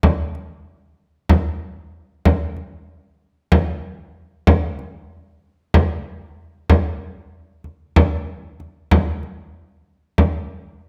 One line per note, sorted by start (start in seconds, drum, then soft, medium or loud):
0.03 frame drum medium
0.35 frame drum soft
1.29 frame drum medium
2.25 frame drum medium
2.57 frame drum soft
3.52 frame drum medium
4.47 frame drum medium
4.79 frame drum soft
5.74 frame drum medium
6.70 frame drum medium
7.64 frame drum soft
7.96 frame drum medium
8.60 frame drum soft
8.91 frame drum medium
9.23 frame drum soft
10.18 frame drum medium